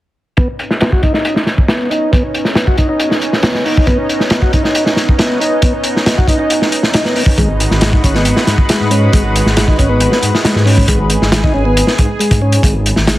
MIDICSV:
0, 0, Header, 1, 5, 480
1, 0, Start_track
1, 0, Tempo, 437956
1, 409, Time_signature, 4, 2, 24, 8
1, 14451, End_track
2, 0, Start_track
2, 0, Title_t, "Analog synth pad"
2, 0, Program_c, 0, 89
2, 411, Note_on_c, 0, 63, 88
2, 413, Note_on_c, 0, 59, 76
2, 413, Note_on_c, 0, 61, 73
2, 8047, Note_off_c, 0, 59, 0
2, 8047, Note_off_c, 0, 61, 0
2, 8093, Note_on_c, 0, 56, 80
2, 8093, Note_on_c, 0, 71, 91
2, 8094, Note_on_c, 0, 66, 73
2, 11893, Note_off_c, 0, 66, 0
2, 11926, Note_on_c, 0, 68, 74
2, 14451, Note_off_c, 0, 56, 0
2, 14451, Note_off_c, 0, 63, 0
2, 14451, Note_off_c, 0, 68, 0
2, 14451, Note_off_c, 0, 71, 0
2, 14451, End_track
3, 0, Start_track
3, 0, Title_t, "Tonewheel organ"
3, 0, Program_c, 1, 16
3, 410, Note_on_c, 1, 59, 71
3, 526, Note_off_c, 1, 59, 0
3, 887, Note_on_c, 1, 59, 72
3, 998, Note_off_c, 1, 59, 0
3, 1010, Note_on_c, 1, 66, 69
3, 1116, Note_off_c, 1, 66, 0
3, 1125, Note_on_c, 1, 63, 66
3, 1237, Note_off_c, 1, 63, 0
3, 1252, Note_on_c, 1, 63, 68
3, 1476, Note_off_c, 1, 63, 0
3, 1489, Note_on_c, 1, 63, 73
3, 1566, Note_off_c, 1, 63, 0
3, 1847, Note_on_c, 1, 59, 69
3, 2076, Note_off_c, 1, 59, 0
3, 2088, Note_on_c, 1, 63, 67
3, 2317, Note_off_c, 1, 63, 0
3, 2328, Note_on_c, 1, 59, 72
3, 2445, Note_off_c, 1, 59, 0
3, 2806, Note_on_c, 1, 59, 75
3, 2918, Note_off_c, 1, 59, 0
3, 2926, Note_on_c, 1, 66, 71
3, 3034, Note_off_c, 1, 66, 0
3, 3045, Note_on_c, 1, 63, 66
3, 3154, Note_off_c, 1, 63, 0
3, 3168, Note_on_c, 1, 63, 70
3, 3389, Note_off_c, 1, 63, 0
3, 3402, Note_on_c, 1, 63, 70
3, 3482, Note_off_c, 1, 63, 0
3, 3763, Note_on_c, 1, 59, 67
3, 3994, Note_off_c, 1, 59, 0
3, 4003, Note_on_c, 1, 63, 68
3, 4234, Note_off_c, 1, 63, 0
3, 4242, Note_on_c, 1, 59, 76
3, 4362, Note_off_c, 1, 59, 0
3, 4723, Note_on_c, 1, 59, 73
3, 4836, Note_off_c, 1, 59, 0
3, 4845, Note_on_c, 1, 66, 73
3, 4954, Note_off_c, 1, 66, 0
3, 4964, Note_on_c, 1, 63, 70
3, 5075, Note_off_c, 1, 63, 0
3, 5088, Note_on_c, 1, 63, 70
3, 5310, Note_off_c, 1, 63, 0
3, 5323, Note_on_c, 1, 63, 76
3, 5403, Note_off_c, 1, 63, 0
3, 5683, Note_on_c, 1, 59, 69
3, 5914, Note_off_c, 1, 59, 0
3, 5924, Note_on_c, 1, 63, 69
3, 6155, Note_off_c, 1, 63, 0
3, 6165, Note_on_c, 1, 59, 74
3, 6284, Note_off_c, 1, 59, 0
3, 6647, Note_on_c, 1, 59, 78
3, 6758, Note_off_c, 1, 59, 0
3, 6767, Note_on_c, 1, 66, 70
3, 6875, Note_off_c, 1, 66, 0
3, 6888, Note_on_c, 1, 63, 73
3, 6992, Note_off_c, 1, 63, 0
3, 7005, Note_on_c, 1, 63, 70
3, 7233, Note_off_c, 1, 63, 0
3, 7246, Note_on_c, 1, 63, 74
3, 7324, Note_off_c, 1, 63, 0
3, 7605, Note_on_c, 1, 63, 88
3, 7717, Note_off_c, 1, 63, 0
3, 7726, Note_on_c, 1, 59, 86
3, 7832, Note_off_c, 1, 59, 0
3, 7845, Note_on_c, 1, 59, 70
3, 7926, Note_off_c, 1, 59, 0
3, 8084, Note_on_c, 1, 56, 72
3, 8203, Note_off_c, 1, 56, 0
3, 8564, Note_on_c, 1, 56, 72
3, 8677, Note_off_c, 1, 56, 0
3, 8690, Note_on_c, 1, 63, 73
3, 8797, Note_off_c, 1, 63, 0
3, 8809, Note_on_c, 1, 61, 70
3, 8919, Note_off_c, 1, 61, 0
3, 8930, Note_on_c, 1, 59, 72
3, 9158, Note_off_c, 1, 59, 0
3, 9174, Note_on_c, 1, 59, 74
3, 9248, Note_off_c, 1, 59, 0
3, 9527, Note_on_c, 1, 56, 69
3, 9756, Note_off_c, 1, 56, 0
3, 9765, Note_on_c, 1, 61, 69
3, 9995, Note_off_c, 1, 61, 0
3, 10003, Note_on_c, 1, 56, 76
3, 10122, Note_off_c, 1, 56, 0
3, 10487, Note_on_c, 1, 56, 78
3, 10598, Note_off_c, 1, 56, 0
3, 10609, Note_on_c, 1, 63, 73
3, 10716, Note_off_c, 1, 63, 0
3, 10725, Note_on_c, 1, 61, 72
3, 10838, Note_off_c, 1, 61, 0
3, 10844, Note_on_c, 1, 59, 67
3, 11073, Note_off_c, 1, 59, 0
3, 11086, Note_on_c, 1, 59, 75
3, 11164, Note_off_c, 1, 59, 0
3, 11442, Note_on_c, 1, 56, 72
3, 11674, Note_off_c, 1, 56, 0
3, 11681, Note_on_c, 1, 61, 75
3, 11914, Note_off_c, 1, 61, 0
3, 11926, Note_on_c, 1, 56, 77
3, 12044, Note_off_c, 1, 56, 0
3, 12409, Note_on_c, 1, 56, 77
3, 12519, Note_off_c, 1, 56, 0
3, 12531, Note_on_c, 1, 63, 76
3, 12637, Note_off_c, 1, 63, 0
3, 12648, Note_on_c, 1, 61, 70
3, 12759, Note_off_c, 1, 61, 0
3, 12772, Note_on_c, 1, 59, 73
3, 13000, Note_off_c, 1, 59, 0
3, 13013, Note_on_c, 1, 59, 73
3, 13088, Note_off_c, 1, 59, 0
3, 13365, Note_on_c, 1, 56, 73
3, 13595, Note_off_c, 1, 56, 0
3, 13608, Note_on_c, 1, 61, 76
3, 13837, Note_off_c, 1, 61, 0
3, 13849, Note_on_c, 1, 56, 73
3, 13966, Note_off_c, 1, 56, 0
3, 14326, Note_on_c, 1, 56, 82
3, 14438, Note_off_c, 1, 56, 0
3, 14451, End_track
4, 0, Start_track
4, 0, Title_t, "Detuned saw bass"
4, 0, Program_c, 2, 39
4, 8086, Note_on_c, 2, 32, 91
4, 8397, Note_off_c, 2, 32, 0
4, 8450, Note_on_c, 2, 32, 76
4, 8757, Note_off_c, 2, 32, 0
4, 8812, Note_on_c, 2, 32, 94
4, 9120, Note_off_c, 2, 32, 0
4, 9289, Note_on_c, 2, 44, 89
4, 9379, Note_off_c, 2, 44, 0
4, 9650, Note_on_c, 2, 44, 94
4, 9957, Note_off_c, 2, 44, 0
4, 10012, Note_on_c, 2, 32, 95
4, 10320, Note_off_c, 2, 32, 0
4, 10364, Note_on_c, 2, 32, 78
4, 10674, Note_off_c, 2, 32, 0
4, 10729, Note_on_c, 2, 32, 95
4, 11038, Note_off_c, 2, 32, 0
4, 11207, Note_on_c, 2, 44, 92
4, 11297, Note_off_c, 2, 44, 0
4, 11569, Note_on_c, 2, 44, 91
4, 11877, Note_off_c, 2, 44, 0
4, 11924, Note_on_c, 2, 32, 93
4, 12236, Note_off_c, 2, 32, 0
4, 12293, Note_on_c, 2, 32, 79
4, 12599, Note_off_c, 2, 32, 0
4, 12653, Note_on_c, 2, 32, 96
4, 12960, Note_off_c, 2, 32, 0
4, 13139, Note_on_c, 2, 44, 91
4, 13223, Note_off_c, 2, 44, 0
4, 13492, Note_on_c, 2, 44, 94
4, 13798, Note_off_c, 2, 44, 0
4, 13844, Note_on_c, 2, 32, 91
4, 14156, Note_off_c, 2, 32, 0
4, 14215, Note_on_c, 2, 32, 78
4, 14451, Note_off_c, 2, 32, 0
4, 14451, End_track
5, 0, Start_track
5, 0, Title_t, "Drums"
5, 404, Note_on_c, 9, 42, 68
5, 412, Note_on_c, 9, 36, 102
5, 514, Note_off_c, 9, 42, 0
5, 522, Note_off_c, 9, 36, 0
5, 648, Note_on_c, 9, 42, 60
5, 758, Note_off_c, 9, 42, 0
5, 773, Note_on_c, 9, 38, 34
5, 883, Note_off_c, 9, 38, 0
5, 883, Note_on_c, 9, 42, 86
5, 897, Note_on_c, 9, 38, 104
5, 993, Note_off_c, 9, 42, 0
5, 1006, Note_off_c, 9, 38, 0
5, 1013, Note_on_c, 9, 36, 82
5, 1122, Note_off_c, 9, 36, 0
5, 1126, Note_on_c, 9, 42, 54
5, 1130, Note_on_c, 9, 36, 90
5, 1236, Note_off_c, 9, 42, 0
5, 1239, Note_off_c, 9, 36, 0
5, 1248, Note_on_c, 9, 38, 36
5, 1358, Note_off_c, 9, 38, 0
5, 1368, Note_on_c, 9, 42, 88
5, 1478, Note_off_c, 9, 42, 0
5, 1492, Note_on_c, 9, 38, 41
5, 1602, Note_off_c, 9, 38, 0
5, 1606, Note_on_c, 9, 38, 44
5, 1613, Note_on_c, 9, 42, 55
5, 1715, Note_off_c, 9, 38, 0
5, 1723, Note_off_c, 9, 42, 0
5, 1732, Note_on_c, 9, 36, 78
5, 1842, Note_off_c, 9, 36, 0
5, 1846, Note_on_c, 9, 38, 100
5, 1854, Note_on_c, 9, 42, 72
5, 1955, Note_off_c, 9, 38, 0
5, 1963, Note_off_c, 9, 42, 0
5, 2094, Note_on_c, 9, 42, 59
5, 2204, Note_off_c, 9, 42, 0
5, 2333, Note_on_c, 9, 36, 109
5, 2337, Note_on_c, 9, 42, 71
5, 2442, Note_off_c, 9, 36, 0
5, 2446, Note_off_c, 9, 42, 0
5, 2569, Note_on_c, 9, 42, 56
5, 2679, Note_off_c, 9, 42, 0
5, 2684, Note_on_c, 9, 38, 37
5, 2794, Note_off_c, 9, 38, 0
5, 2800, Note_on_c, 9, 38, 99
5, 2811, Note_on_c, 9, 42, 77
5, 2910, Note_off_c, 9, 38, 0
5, 2920, Note_off_c, 9, 42, 0
5, 2929, Note_on_c, 9, 36, 78
5, 3039, Note_off_c, 9, 36, 0
5, 3041, Note_on_c, 9, 42, 58
5, 3051, Note_on_c, 9, 36, 82
5, 3151, Note_off_c, 9, 42, 0
5, 3160, Note_off_c, 9, 36, 0
5, 3283, Note_on_c, 9, 42, 70
5, 3393, Note_off_c, 9, 42, 0
5, 3411, Note_on_c, 9, 38, 35
5, 3521, Note_off_c, 9, 38, 0
5, 3524, Note_on_c, 9, 42, 59
5, 3634, Note_off_c, 9, 42, 0
5, 3650, Note_on_c, 9, 38, 40
5, 3755, Note_on_c, 9, 42, 72
5, 3759, Note_off_c, 9, 38, 0
5, 3761, Note_on_c, 9, 38, 105
5, 3864, Note_off_c, 9, 42, 0
5, 3871, Note_off_c, 9, 38, 0
5, 3884, Note_on_c, 9, 38, 46
5, 3994, Note_off_c, 9, 38, 0
5, 4007, Note_on_c, 9, 46, 71
5, 4116, Note_off_c, 9, 46, 0
5, 4137, Note_on_c, 9, 36, 83
5, 4241, Note_on_c, 9, 42, 73
5, 4244, Note_off_c, 9, 36, 0
5, 4244, Note_on_c, 9, 36, 99
5, 4351, Note_off_c, 9, 42, 0
5, 4353, Note_off_c, 9, 36, 0
5, 4487, Note_on_c, 9, 42, 60
5, 4596, Note_off_c, 9, 42, 0
5, 4606, Note_on_c, 9, 38, 32
5, 4713, Note_on_c, 9, 42, 82
5, 4716, Note_off_c, 9, 38, 0
5, 4721, Note_on_c, 9, 38, 102
5, 4823, Note_off_c, 9, 42, 0
5, 4831, Note_off_c, 9, 38, 0
5, 4844, Note_on_c, 9, 36, 73
5, 4954, Note_off_c, 9, 36, 0
5, 4964, Note_on_c, 9, 42, 55
5, 4970, Note_on_c, 9, 36, 87
5, 5073, Note_off_c, 9, 42, 0
5, 5079, Note_off_c, 9, 36, 0
5, 5092, Note_on_c, 9, 38, 34
5, 5202, Note_off_c, 9, 38, 0
5, 5204, Note_on_c, 9, 42, 84
5, 5313, Note_off_c, 9, 42, 0
5, 5329, Note_on_c, 9, 38, 42
5, 5438, Note_off_c, 9, 38, 0
5, 5441, Note_on_c, 9, 38, 44
5, 5451, Note_on_c, 9, 42, 55
5, 5551, Note_off_c, 9, 38, 0
5, 5561, Note_off_c, 9, 42, 0
5, 5576, Note_on_c, 9, 36, 80
5, 5685, Note_off_c, 9, 36, 0
5, 5686, Note_on_c, 9, 42, 80
5, 5692, Note_on_c, 9, 38, 91
5, 5795, Note_off_c, 9, 42, 0
5, 5801, Note_off_c, 9, 38, 0
5, 5933, Note_on_c, 9, 42, 55
5, 6043, Note_off_c, 9, 42, 0
5, 6160, Note_on_c, 9, 42, 77
5, 6166, Note_on_c, 9, 36, 94
5, 6269, Note_off_c, 9, 42, 0
5, 6275, Note_off_c, 9, 36, 0
5, 6396, Note_on_c, 9, 42, 60
5, 6505, Note_off_c, 9, 42, 0
5, 6538, Note_on_c, 9, 38, 34
5, 6644, Note_on_c, 9, 42, 80
5, 6646, Note_off_c, 9, 38, 0
5, 6646, Note_on_c, 9, 38, 109
5, 6753, Note_off_c, 9, 42, 0
5, 6756, Note_off_c, 9, 38, 0
5, 6776, Note_on_c, 9, 36, 82
5, 6878, Note_off_c, 9, 36, 0
5, 6878, Note_on_c, 9, 36, 90
5, 6887, Note_on_c, 9, 42, 64
5, 6988, Note_off_c, 9, 36, 0
5, 6997, Note_off_c, 9, 42, 0
5, 7125, Note_on_c, 9, 42, 76
5, 7235, Note_off_c, 9, 42, 0
5, 7253, Note_on_c, 9, 38, 36
5, 7363, Note_off_c, 9, 38, 0
5, 7366, Note_on_c, 9, 42, 62
5, 7475, Note_off_c, 9, 42, 0
5, 7487, Note_on_c, 9, 38, 46
5, 7597, Note_off_c, 9, 38, 0
5, 7601, Note_on_c, 9, 42, 76
5, 7611, Note_on_c, 9, 38, 97
5, 7710, Note_off_c, 9, 42, 0
5, 7721, Note_off_c, 9, 38, 0
5, 7726, Note_on_c, 9, 38, 47
5, 7836, Note_off_c, 9, 38, 0
5, 7847, Note_on_c, 9, 46, 77
5, 7956, Note_off_c, 9, 46, 0
5, 7959, Note_on_c, 9, 36, 92
5, 8069, Note_off_c, 9, 36, 0
5, 8086, Note_on_c, 9, 36, 103
5, 8087, Note_on_c, 9, 42, 72
5, 8196, Note_off_c, 9, 36, 0
5, 8196, Note_off_c, 9, 42, 0
5, 8332, Note_on_c, 9, 42, 59
5, 8441, Note_off_c, 9, 42, 0
5, 8451, Note_on_c, 9, 38, 33
5, 8560, Note_on_c, 9, 42, 73
5, 8561, Note_off_c, 9, 38, 0
5, 8569, Note_on_c, 9, 38, 106
5, 8669, Note_off_c, 9, 42, 0
5, 8678, Note_off_c, 9, 38, 0
5, 8692, Note_on_c, 9, 36, 90
5, 8802, Note_off_c, 9, 36, 0
5, 8810, Note_on_c, 9, 42, 66
5, 8811, Note_on_c, 9, 36, 98
5, 8919, Note_off_c, 9, 42, 0
5, 8921, Note_off_c, 9, 36, 0
5, 8929, Note_on_c, 9, 38, 35
5, 9039, Note_off_c, 9, 38, 0
5, 9043, Note_on_c, 9, 42, 75
5, 9152, Note_off_c, 9, 42, 0
5, 9168, Note_on_c, 9, 38, 43
5, 9278, Note_off_c, 9, 38, 0
5, 9284, Note_on_c, 9, 38, 47
5, 9285, Note_on_c, 9, 42, 56
5, 9393, Note_off_c, 9, 38, 0
5, 9394, Note_off_c, 9, 42, 0
5, 9404, Note_on_c, 9, 36, 84
5, 9514, Note_off_c, 9, 36, 0
5, 9523, Note_on_c, 9, 42, 82
5, 9533, Note_on_c, 9, 38, 97
5, 9632, Note_off_c, 9, 42, 0
5, 9643, Note_off_c, 9, 38, 0
5, 9764, Note_on_c, 9, 42, 60
5, 9874, Note_off_c, 9, 42, 0
5, 10010, Note_on_c, 9, 42, 86
5, 10012, Note_on_c, 9, 36, 104
5, 10119, Note_off_c, 9, 42, 0
5, 10121, Note_off_c, 9, 36, 0
5, 10254, Note_on_c, 9, 42, 60
5, 10364, Note_off_c, 9, 42, 0
5, 10372, Note_on_c, 9, 38, 36
5, 10482, Note_off_c, 9, 38, 0
5, 10485, Note_on_c, 9, 42, 82
5, 10490, Note_on_c, 9, 38, 105
5, 10595, Note_off_c, 9, 42, 0
5, 10600, Note_off_c, 9, 38, 0
5, 10608, Note_on_c, 9, 36, 90
5, 10718, Note_off_c, 9, 36, 0
5, 10728, Note_on_c, 9, 42, 61
5, 10730, Note_on_c, 9, 36, 84
5, 10838, Note_off_c, 9, 42, 0
5, 10839, Note_off_c, 9, 36, 0
5, 10964, Note_on_c, 9, 42, 75
5, 11074, Note_off_c, 9, 42, 0
5, 11091, Note_on_c, 9, 38, 36
5, 11201, Note_off_c, 9, 38, 0
5, 11207, Note_on_c, 9, 42, 66
5, 11317, Note_off_c, 9, 42, 0
5, 11340, Note_on_c, 9, 38, 45
5, 11449, Note_off_c, 9, 38, 0
5, 11449, Note_on_c, 9, 38, 113
5, 11453, Note_on_c, 9, 42, 84
5, 11559, Note_off_c, 9, 38, 0
5, 11562, Note_off_c, 9, 42, 0
5, 11577, Note_on_c, 9, 38, 47
5, 11687, Note_off_c, 9, 38, 0
5, 11694, Note_on_c, 9, 46, 71
5, 11804, Note_off_c, 9, 46, 0
5, 11811, Note_on_c, 9, 36, 81
5, 11921, Note_off_c, 9, 36, 0
5, 11923, Note_on_c, 9, 42, 89
5, 11925, Note_on_c, 9, 36, 105
5, 12032, Note_off_c, 9, 42, 0
5, 12035, Note_off_c, 9, 36, 0
5, 12163, Note_on_c, 9, 42, 62
5, 12272, Note_off_c, 9, 42, 0
5, 12297, Note_on_c, 9, 38, 34
5, 12406, Note_off_c, 9, 38, 0
5, 12407, Note_on_c, 9, 38, 107
5, 12409, Note_on_c, 9, 42, 75
5, 12517, Note_off_c, 9, 38, 0
5, 12519, Note_off_c, 9, 42, 0
5, 12536, Note_on_c, 9, 36, 81
5, 12646, Note_off_c, 9, 36, 0
5, 12900, Note_on_c, 9, 42, 80
5, 13009, Note_off_c, 9, 42, 0
5, 13012, Note_on_c, 9, 38, 46
5, 13122, Note_off_c, 9, 38, 0
5, 13134, Note_on_c, 9, 42, 64
5, 13138, Note_on_c, 9, 36, 93
5, 13244, Note_off_c, 9, 42, 0
5, 13247, Note_off_c, 9, 36, 0
5, 13375, Note_on_c, 9, 42, 55
5, 13485, Note_off_c, 9, 42, 0
5, 13492, Note_on_c, 9, 42, 77
5, 13493, Note_on_c, 9, 36, 93
5, 13601, Note_off_c, 9, 42, 0
5, 13602, Note_off_c, 9, 36, 0
5, 13727, Note_on_c, 9, 42, 60
5, 13836, Note_off_c, 9, 42, 0
5, 13845, Note_on_c, 9, 36, 107
5, 13850, Note_on_c, 9, 42, 80
5, 13954, Note_off_c, 9, 36, 0
5, 13959, Note_off_c, 9, 42, 0
5, 14093, Note_on_c, 9, 42, 62
5, 14203, Note_off_c, 9, 42, 0
5, 14207, Note_on_c, 9, 38, 38
5, 14316, Note_off_c, 9, 38, 0
5, 14330, Note_on_c, 9, 38, 116
5, 14333, Note_on_c, 9, 42, 89
5, 14439, Note_off_c, 9, 38, 0
5, 14443, Note_off_c, 9, 42, 0
5, 14451, End_track
0, 0, End_of_file